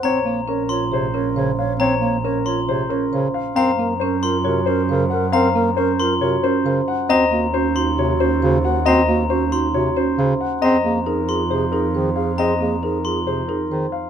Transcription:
<<
  \new Staff \with { instrumentName = "Glockenspiel" } { \time 4/4 \key bes \minor \tempo 4 = 136 bes''8 r4 c'''8 r2 | bes''8 r4 c'''8 r2 | bes''8 r4 c'''8 r2 | bes''8 r4 c'''8 r2 |
bes''8 r4 c'''8 r2 | bes''8 r4 c'''8 r2 | bes''8 r4 c'''8 r2 | bes''8 r4 c'''8 r2 | }
  \new Staff \with { instrumentName = "Grand piano" } { \time 4/4 \key bes \minor des''8 r8 bes'8 r8 c''8 bes'8 r8 f''8 | des''8 r8 bes'8 r8 c''8 bes'8 r8 f''8 | f''8 r8 c''8 r8 des''8 c''8 r8 ges''8 | f''8 r8 c''8 r8 des''8 c''8 r8 ges''8 |
ees''8 r8 c''8 r8 des''8 c''8 r8 ges''8 | ees''8 r8 c''8 r8 des''8 c''8 r8 ges''8 | ees''8 r8 bes'8 r8 c''8 bes'8 r8 f''8 | ees''8 r8 bes'8 r8 c''8 bes'8 r8 f''8 | }
  \new Staff \with { instrumentName = "Alto flute" } { \time 4/4 \key bes \minor des''8 des''8 des''8 des''8 des''8 des''8 des''8 des''8 | des''8 des''8 des''8 des''8 des''8 des''8 des''8 r8 | bes'8 bes'8 bes'8 bes'8 bes'8 bes'8 bes'8 bes'8 | bes'8 bes'8 bes'8 bes'8 bes'8 bes'8 bes'8 r8 |
ges'8 ges'8 ges'8 ges'8 ges'8 ges'8 ges'8 ges'8 | ges'8 ges'8 ges'8 ges'8 ges'8 ges'8 ges'8 r8 | aes'8 aes'8 aes'8 aes'8 aes'8 aes'8 aes'8 aes'8 | aes'8 aes'8 aes'8 aes'8 aes'8 aes'8 aes'8 r8 | }
  \new Staff \with { instrumentName = "Marimba" } { \time 4/4 \key bes \minor c''8 c'8 des'8 f'8 aes'8 des'8 c''8 r8 | c''8 c'8 des'8 f'8 aes'8 des'8 c''8 r8 | c''8 c'8 des'8 f'8 ges'8 des'8 c''8 r8 | c''8 c'8 des'8 f'8 ges'8 des'8 c''8 r8 |
c''8 c'8 des'8 ees'8 ges'8 des'8 c''8 r8 | c''8 c'8 des'8 ees'8 ges'8 des'8 c''8 r8 | c''8 c'8 ees'8 f'8 aes'8 ees'8 c''8 r8 | c''8 c'8 ees'8 f'8 aes'8 ees'8 c''8 r8 | }
  \new Staff \with { instrumentName = "Bass clarinet" } { \clef bass \time 4/4 \key bes \minor c'8 bes8 r4 c8 r8 des8 r8 | c'8 bes8 r4 c8 r8 des8 r8 | c'8 bes8 r4 c8 r8 des8 r8 | c'8 bes8 r4 c8 r8 des8 r8 |
c'8 bes8 r4 c8 r8 des8 r8 | c'8 bes8 r4 c8 r8 des8 r8 | c'8 bes8 r4 c8 r8 ees8 r8 | c'8 bes8 r4 c8 r8 ees8 r8 | }
  \new Staff \with { instrumentName = "Double bass" } { \clef bass \time 4/4 \key bes \minor bes,,1~ | bes,,1 | ges,1~ | ges,1 |
ees,1~ | ees,1 | f,1~ | f,1 | }
>>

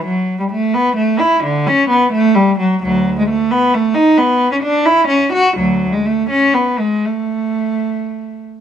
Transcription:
\new Staff \with { instrumentName = "Cello" } { \time 6/8 \key a \mixolydian \tempo 4. = 86 fis8. g16 a8 b8 a8 e'8 | d8 cis'8 b8 a8 g8 fis8 | \key a \major <d, fis>8. gis16 a8 b8 a8 dis'8 | b8. cis'16 d'8 e'8 cis'8 fis'8 |
<d, fis>8. gis16 a8 cis'8 b8 gis8 | a2~ a8 r8 | }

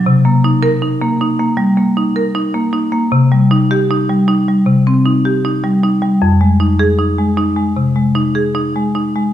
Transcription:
<<
  \new Staff \with { instrumentName = "Marimba" } { \time 4/4 \key c \minor \tempo 4 = 78 r8. bes'8 r2 r8. | r8. g'8 r2 r8. | r8. aes'8 r2 r8. | }
  \new Staff \with { instrumentName = "Marimba" } { \time 4/4 \key c \minor c16 bes16 ees'8 ees'16 bes16 ees'16 bes16 g16 bes16 ees'16 bes'16 ees'16 bes16 ees'16 bes16 | c16 g16 ees'8 ees'16 g16 ees'16 g16 c16 c'16 ees'16 g'16 ees'16 g16 ees'16 g16 | f,16 aes16 ees'8 ees'16 aes16 ees'16 aes16 c16 aes16 ees'16 aes'16 ees'16 aes16 ees'16 aes16 | }
>>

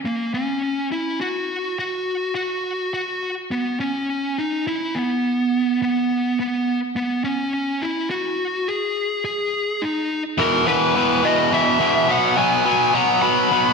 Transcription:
<<
  \new Staff \with { instrumentName = "Lead electric guitar" } { \time 3/4 \key e \lydian \tempo 4 = 105 ais8 cis'4 e'8 fis'4 | fis'4 fis'4 fis'8. r16 | b8 cis'4 dis'8 e'8 b8~ | b4 b4 b8. r16 |
b8 cis'4 e'8 fis'4 | gis'4 gis'4 dis'8. r16 | ais'8 b'4 dis''8 e''4 | fis''8 gis''4 ais''8 b''4 | }
  \new Staff \with { instrumentName = "Overdriven electric guitar" } { \clef bass \time 3/4 \key e \lydian r2. | r2. | r2. | r2. |
r2. | r2. | <e, b, e>8 <e, b, e>8 <e, b, e>8 <e, b, e>8 <e, b, e>8 <e, b, e>8 | <b, fis b>8 <b, fis b>8 <b, fis b>8 <b, fis b>8 <b, fis b>8 <b, fis b>8 | }
>>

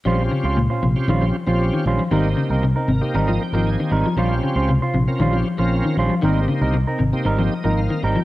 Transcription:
<<
  \new Staff \with { instrumentName = "Clean electric guitar" } { \time 4/4 \key bes \dorian \tempo 4 = 117 <g des' f' c''>16 r8 <des' f' c''>16 r16 <des' f' c''>16 r8 <g des' f' c''>16 r8 <des' f' c''>16 r8 <g des' f' c''>16 r16 | <g c' ees' bes'>16 r8 <c' ees' bes'>16 r16 <c' ees' bes'>16 r8 <g c' ees' bes'>16 r8 <c' ees' bes'>16 r8 <g c' ees' bes'>16 r16 | <g des' f' c''>16 r8 <des' f' c''>16 r16 <f' c''>16 r8 <g des' f' c''>16 r8 <des' f' c''>16 r8 <g des' f' c''>16 r16 | <g c' ees' bes'>16 r8 <c' ees' bes'>16 r16 <c' ees' bes'>16 r8 <g c' ees' bes'>16 r8 <c' ees' bes'>16 r8 <g c' ees' bes'>16 r16 | }
  \new Staff \with { instrumentName = "Tonewheel organ" } { \time 4/4 \key bes \dorian << { r1 | r4. bes'8 ees''8 g''8 aes''8 aes''8 | r1 | r2 r8 ees''8 f''8 g''8 | } \\ { <c' des' f' g'>4 r8. <c' des' f' g'>16 r16 <c' des' f' g'>16 r16 <c' des' f' g'>8. r8 | <bes c' ees' g'>4 r8. <bes c' ees' g'>16 r16 <bes c' ees' bes'>16 r16 <bes c' ees' g'>8. r8 | <c' des' f' g'>4 r8. <c' des' f' bes'>16 r16 <c' des' f' g'>16 r16 <c' des' f' bes'>8. r8 | <bes c' ees' g'>4 r8. <bes c' ees' g'>16 r16 <bes c' ees' g'>16 r16 <bes c' ees' bes'>8. r8 | } >> }
  \new Staff \with { instrumentName = "Clean electric guitar" } { \clef bass \time 4/4 \key bes \dorian f8 des8 bes,8 c8 ees16 f8 f8 ees8 f16 | ees8 des8 c8 c8 ees16 f8 f8 ees8 f16 | f8 des8 c8 c8 ees16 f8 f8 ees8 f16 | ees8 des8 c8 c8 r16 f8 f8 ees8 f16 | }
  \new Staff \with { instrumentName = "Fingered electric bass" } { \clef bass \time 4/4 \key bes \dorian bes,,8 r16 des,8 r16 bes,,16 r16 bes,,8 r16 bes,,8 r16 bes,,16 r16 | aes,,8 r16 c,8 r16 aes,,16 r16 aes,,8 r16 aes,,8 r16 aes,,16 r16 | bes,,8 r16 des,8 r16 bes,,16 r16 bes,,8 r16 bes,,8 r16 bes,,16 r16 | aes,,8 r16 c,8 r16 aes,,16 r16 aes,,8 r16 aes,,8 r16 aes,,16 r16 | }
>>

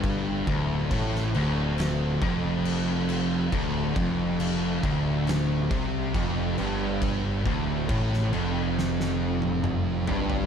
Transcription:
<<
  \new Staff \with { instrumentName = "Distorted electric guitar" } { \clef bass \time 4/4 \key d \minor \tempo 4 = 69 g,8 d,8 a,8 d,4 f,4. | d,8 f,4 d,4 c8 f,8 g,8~ | g,8 d,8 a,8 f,2 g,8 | }
  \new Staff \with { instrumentName = "Distorted electric guitar" } { \clef bass \time 4/4 \key d \minor g,8 d,8 a,8 d,4 f,4. | d,8 f,4 d,4 c8 f,8 g,8~ | g,8 d,8 a,8 f,2 g,8 | }
  \new Staff \with { instrumentName = "Distorted electric guitar" } { \clef bass \time 4/4 \key d \minor g,8 d,8 a,8 d,4 f,4. | d,8 f,4 d,4 c8 f,8 g,8~ | g,8 d,8 a,8 f,2 g,8 | }
  \new Staff \with { instrumentName = "Fingered electric bass" } { \clef bass \time 4/4 \key d \minor g,,8 d,,8 a,,8 d,,4 f,,4. | d,,8 f,,4 d,,4 c,8 f,,8 g,,8~ | g,,8 d,,8 a,,8 f,,2 g,,8 | }
  \new DrumStaff \with { instrumentName = "Drums" } \drummode { \time 4/4 <cymc bd>8 <cymc bd>8 <cymc bd>16 sn16 cymc8 <cymc sn>8 <cymc bd>8 cymc8 cymc8 | <cymc bd>8 <cymc bd>8 cymc8 <cymc bd>8 <cymc sn>8 <cymc bd>8 <cymc bd>8 cymc8 | <cymc bd>8 <cymc bd>8 <cymc bd>16 sn16 cymc8 sn16 sn8 tommh16 toml8 tomfh16 tomfh16 | }
>>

